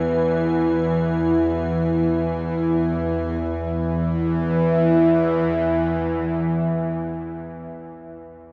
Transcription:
Already playing: synth drone E2 E3, analog synth pad E4 B4 F#5, ambient pad G#5
3.42 synth drone E2 E3, analog synth pad E4
3.58 analog synth pad B4
3.77 analog synth pad E5

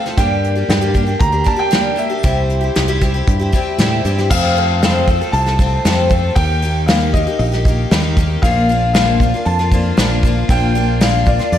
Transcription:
0.06 twelve-string acoustic guitar F3 A3 C4 A4, snare
0.17 fingered electric bass G2, twelve-string acoustic guitar G2 D3 G3 A#3 D4 G4, grand piano G5, kick, closed hi-hat
0.44 closed hi-hat
0.55 twelve-string acoustic guitar G3 A#3 D4 G4
0.68 fingered electric bass G2, grand piano G5, snare, closed hi-hat
0.81 twelve-string acoustic guitar G2 D3 G3 A#3 D4 G4
0.94 twelve-string acoustic guitar G3 A#3 D4 G4, kick, closed hi-hat
1.07 twelve-string acoustic guitar G3 A#3 D4 G4
1.19 fingered electric bass D2, grand piano A#5, kick, closed hi-hat
1.32 twelve-string acoustic guitar G3 A#3 D4 G4
1.44 twelve-string acoustic guitar G3 A#3 D4 G4, grand piano A5, kick, closed hi-hat
1.56 twelve-string acoustic guitar G3 A#3 D4 G4, grand piano G5
1.71 twelve-string acoustic guitar G2 D3 G3 A#3 D4 G4, snare, closed hi-hat
1.96 twelve-string acoustic guitar G3 A#3 D4 G4, grand piano E5, closed hi-hat
2.10 twelve-string acoustic guitar G3 A#3 D4 G4
2.23 fingered electric bass C2, twelve-string acoustic guitar C3 G3 C4 E4 G4, kick, closed hi-hat
2.50 closed hi-hat
2.61 twelve-string acoustic guitar C4 E4 G4
2.76 fingered electric bass C2, snare, closed hi-hat
2.88 twelve-string acoustic guitar C3 G3 C4 E4 G4
3.01 twelve-string acoustic guitar G3 C4 E4 G4, kick, closed hi-hat
3.14 twelve-string acoustic guitar C4 E4 G4
3.27 fingered electric bass G2, kick, closed hi-hat
3.40 twelve-string acoustic guitar C4 E4 G4
3.52 twelve-string acoustic guitar G3 C4 E4 G4, kick, closed hi-hat
3.78 fingered electric bass A2, twelve-string acoustic guitar C3 G3 C4 E4 G4, snare, closed hi-hat
4.05 fingered electric bass G2, twelve-string acoustic guitar G3 C4 E4 G4, closed hi-hat
4.18 twelve-string acoustic guitar C4 E4 G4, snare
4.30 fingered electric bass F2, twelve-string acoustic guitar F2 C3 F3 A3 C4 A4, grand piano F5, kick, crash
4.56 twelve-string acoustic guitar F3 A3 C4 A4, open hi-hat
4.82 twelve-string acoustic guitar F2 C3 F3 A3 C4 A4, grand piano F5, snare, open hi-hat
5.08 twelve-string acoustic guitar F3 A3 C4 A4, kick, open hi-hat
5.21 twelve-string acoustic guitar F3 A3 C4 A4
5.32 fingered electric bass C2, grand piano A5, open hi-hat
5.46 twelve-string acoustic guitar F3 A3 C4 A4, snare
5.59 twelve-string acoustic guitar F3 A3 C4 A4, kick, open hi-hat
5.85 fingered electric bass F2, twelve-string acoustic guitar F2 C3 F3 A3 C4 A4, snare, open hi-hat
6.10 twelve-string acoustic guitar F3 A3 C4 A4, kick, open hi-hat
6.35 fingered electric bass D#2, twelve-string acoustic guitar D#3 A#3 D#4 G4, grand piano G5, kick, open hi-hat
6.62 twelve-string acoustic guitar D#3 A#3 D#4 G4, open hi-hat
6.86 twelve-string acoustic guitar D#3 A#3 D#4 G4, grand piano F5, snare, open hi-hat
7.14 twelve-string acoustic guitar D#3 A#3 D#4 G4, grand piano D#5, kick, open hi-hat
7.27 twelve-string acoustic guitar A#3 D#4 G4
7.39 fingered electric bass A#1, grand piano D#5, open hi-hat
7.52 twelve-string acoustic guitar A#3 D#4 G4, snare
7.65 twelve-string acoustic guitar D#3 A#3 D#4 G4, kick, open hi-hat
7.91 fingered electric bass D#2, twelve-string acoustic guitar D#3 A#3 D#4 G4, snare, open hi-hat
8.17 twelve-string acoustic guitar D#3 A#3 D#4 G4, kick, open hi-hat
8.42 fingered electric bass A#1, twelve-string acoustic guitar A#2 F3 A#3 D4, grand piano F5, kick, open hi-hat
8.46 twelve-string acoustic guitar F4
8.69 twelve-string acoustic guitar F3 A#3 D4 F4, open hi-hat
8.94 twelve-string acoustic guitar A#2 F3 A#3 D4 F4, grand piano F5, snare, open hi-hat
9.20 twelve-string acoustic guitar F3 A#3 D4 F4, kick, open hi-hat
9.34 twelve-string acoustic guitar A#3 D4 F4
9.45 fingered electric bass F2, grand piano A5, open hi-hat
9.59 twelve-string acoustic guitar A#3 D4 F4, snare
9.71 twelve-string acoustic guitar F3 A#3 D4 F4, kick, open hi-hat
9.97 fingered electric bass A#1, twelve-string acoustic guitar A#2 F3 A#3 D4 F4, snare, open hi-hat
10.23 twelve-string acoustic guitar F3 A#3 D4, kick, open hi-hat
10.27 twelve-string acoustic guitar F4
10.49 fingered electric bass A#1, twelve-string acoustic guitar A#2 F3 A#3 D4 F4, grand piano G5, kick, open hi-hat
10.75 twelve-string acoustic guitar F3 A#3 D4 F4, open hi-hat
11.01 twelve-string acoustic guitar A#2 F3 A#3 D4 F4, grand piano F5, snare, open hi-hat
11.26 twelve-string acoustic guitar F3 A#3 D4 F4, grand piano D5, kick, open hi-hat
11.39 twelve-string acoustic guitar A#3 D4 F4, snare
11.52 fingered electric bass F2, grand piano D5, open hi-hat

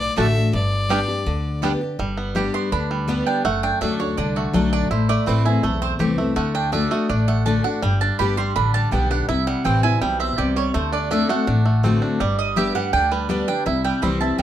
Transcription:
Already playing: upright bass B1, steel-string acoustic guitar A2
0.00 fiddle D5
0.17 upright bass A1, steel-string acoustic guitar D3 A3 D4 F#4, mandolin A3 F#4 D5 A5, five-string banjo A3 D4, fiddle E5
0.37 steel-string acoustic guitar D4
0.53 upright bass G1, steel-string acoustic guitar G2, fiddle D5
0.89 steel-string acoustic guitar G3 B3 D4 G4, five-string banjo G3 B3 D4, mandolin B3 G4 D5 G5
1.08 steel-string acoustic guitar D4 G4
1.26 upright bass D2, steel-string acoustic guitar D3
1.62 steel-string acoustic guitar G3 B3 D4 G4, five-string banjo G3 B3 D4, mandolin B3 G4 D5 G5
1.81 steel-string acoustic guitar D4 G4
1.99 upright bass G1, steel-string acoustic guitar G2, five-string banjo G3
2.17 five-string banjo B3
2.35 steel-string acoustic guitar G3 B3 D4 G4, five-string banjo G4
2.54 five-string banjo B3, mandolin C6
2.72 upright bass D2, steel-string acoustic guitar D3, five-string banjo D4, mandolin B5
2.91 five-string banjo G3
3.08 steel-string acoustic guitar G3 B3 D4 G4, five-string banjo B3
3.26 five-string banjo D4, mandolin G5
3.45 upright bass F#1, steel-string acoustic guitar F#2, five-string banjo A3, mandolin F#5
3.63 five-string banjo D4, mandolin G5
3.81 upright bass D2, steel-string acoustic guitar F#3 A3 D4 F#4, five-string banjo D4, mandolin E5
3.99 five-string banjo D4, steel-string acoustic guitar D4 F#4, mandolin C#5
4.17 upright bass C2, steel-string acoustic guitar D3, five-string banjo D4, mandolin D5
4.36 five-string banjo A3, mandolin F#4
4.53 upright bass B1, steel-string acoustic guitar F#3 A3 D4 F#4, five-string banjo D4, mandolin A4
4.73 five-string banjo D4, mandolin D5
4.91 upright bass A1, steel-string acoustic guitar A2, five-string banjo E4, mandolin C5
5.09 five-string banjo A3, mandolin D5
5.26 upright bass A1, steel-string acoustic guitar E3 A3 C4 E4, five-string banjo C4, mandolin B4
5.45 steel-string acoustic guitar C4 E4, five-string banjo E4, mandolin G#4
5.63 upright bass B1, steel-string acoustic guitar E2, five-string banjo A3, mandolin A4
5.82 five-string banjo C4, mandolin C5
5.99 upright bass C2, steel-string acoustic guitar E3 A3 C4 E4, five-string banjo G4
6.18 five-string banjo A3, steel-string acoustic guitar C4 E4
6.36 upright bass D2, steel-string acoustic guitar D3, five-string banjo A3, mandolin F#5
6.55 five-string banjo D4, mandolin G5
6.72 steel-string acoustic guitar D3 A3 D4 F#4, five-string banjo D4, mandolin E5
6.91 five-string banjo A3, steel-string acoustic guitar D4 F#4, mandolin D#5
7.09 upright bass A1, steel-string acoustic guitar A2, five-string banjo D4, mandolin D5
7.28 five-string banjo A3, mandolin F#5
7.45 steel-string acoustic guitar D3 A3 D4 F#4, five-string banjo D4, mandolin A5
7.64 five-string banjo D4, steel-string acoustic guitar D4 F#4, mandolin F#5
7.82 upright bass G1, steel-string acoustic guitar G2, five-string banjo G3, mandolin G5
8.01 five-string banjo D4, mandolin A5
8.19 upright bass G1, steel-string acoustic guitar G3 B3 D4 G4, five-string banjo G4, mandolin B5
8.37 five-string banjo G3, steel-string acoustic guitar D4 G4, mandolin C6
8.56 upright bass A1, steel-string acoustic guitar D3, five-string banjo D4, mandolin B5
8.74 five-string banjo G3, mandolin A5
8.91 upright bass B1, steel-string acoustic guitar G3 B3 D4 G4, five-string banjo B3, mandolin G5
9.10 five-string banjo D4, steel-string acoustic guitar D4 G4, mandolin F#5
9.29 upright bass C2, steel-string acoustic guitar C3, five-string banjo E4, mandolin E5
9.47 five-string banjo G3, mandolin F#5
9.64 upright bass A1, steel-string acoustic guitar E3 G3 C4 E4, five-string banjo C4, mandolin G5
9.83 steel-string acoustic guitar C4 E4, five-string banjo E4, mandolin G#5
10.01 upright bass B1, steel-string acoustic guitar B2, five-string banjo G3, mandolin G5
10.20 five-string banjo C4, mandolin E5
10.38 upright bass C2, steel-string acoustic guitar C3, five-string banjo G4, mandolin D5
10.56 five-string banjo G3, mandolin C#5
10.74 upright bass D2, steel-string acoustic guitar D3, five-string banjo A3, mandolin C5
10.93 five-string banjo D4, mandolin D5
11.11 steel-string acoustic guitar D3 A3 C4 F#4, five-string banjo D4, mandolin E5
11.29 five-string banjo A3, steel-string acoustic guitar C4 F#4, mandolin F#5
11.47 upright bass A1, steel-string acoustic guitar A2, five-string banjo D4
11.66 five-string banjo A3
11.83 steel-string acoustic guitar D3 A3 C4 F#4, five-string banjo C4
12.02 five-string banjo D4
12.20 upright bass G1, steel-string acoustic guitar G2, five-string banjo G3, mandolin D5
12.39 mandolin D#5
12.56 steel-string acoustic guitar G3 B3 D4 G4, five-string banjo G4, mandolin E5
12.75 five-string banjo G3, steel-string acoustic guitar D4 G4, mandolin F#5
12.93 upright bass D2, steel-string acoustic guitar D3, five-string banjo D4, mandolin G5
13.11 five-string banjo G3, mandolin B4
13.29 steel-string acoustic guitar G3 B3 D4 G4, five-string banjo B3, mandolin D5
13.48 five-string banjo D4, steel-string acoustic guitar D4 G4, mandolin G5
13.66 upright bass C2, steel-string acoustic guitar C3, five-string banjo E4, mandolin E5
13.84 five-string banjo G3, mandolin G5
14.02 upright bass C2, steel-string acoustic guitar E3 G3 C4 E4, five-string banjo C4, mandolin B5
14.20 steel-string acoustic guitar C4 E4, five-string banjo E4, mandolin A5
14.38 upright bass B1, steel-string acoustic guitar G2, mandolin G5

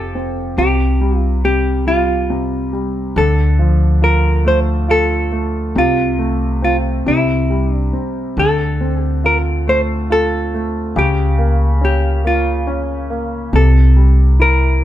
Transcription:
Already playing: upright bass F1, grand piano F3 C4 G4, hollow-body jazz guitar A4
0.15 grand piano C4
0.58 upright bass C2, grand piano C3, hollow-body jazz guitar G4
1.01 grand piano G3
1.17 hollow-body jazz guitar F4
1.45 grand piano C3, hollow-body jazz guitar G4
1.87 grand piano G3, hollow-body jazz guitar F4
2.30 grand piano C3
2.73 grand piano G3
3.16 upright bass D2, grand piano D3, hollow-body jazz guitar A4
3.59 grand piano F3
4.02 grand piano F4, hollow-body jazz guitar A#4
4.45 grand piano A3, hollow-body jazz guitar C5
4.88 grand piano F4, hollow-body jazz guitar A4
5.32 grand piano A3
5.75 upright bass C2, grand piano C3, hollow-body jazz guitar F4
6.19 grand piano A3
6.62 grand piano C4, hollow-body jazz guitar F4
7.06 upright bass C2, grand piano C3, hollow-body jazz guitar E4
7.50 grand piano G3
7.74 hollow-body jazz guitar D4
7.93 grand piano C4
8.37 upright bass D2, grand piano D3, hollow-body jazz guitar A4
8.81 grand piano C4
9.02 hollow-body jazz guitar G4
9.24 grand piano F4, hollow-body jazz guitar A#4
9.67 grand piano A3, hollow-body jazz guitar C5
10.10 grand piano F4, hollow-body jazz guitar A4
10.54 grand piano A3
10.96 upright bass C#2, grand piano C#3, hollow-body jazz guitar G4
11.38 grand piano A#3
11.81 grand piano C#4, hollow-body jazz guitar G4
12.24 grand piano A#3, hollow-body jazz guitar F4
12.67 grand piano C#4
13.10 grand piano A#3
13.53 upright bass C2, grand piano C3, hollow-body jazz guitar A4
13.96 grand piano G3
14.39 grand piano E4, hollow-body jazz guitar A#4

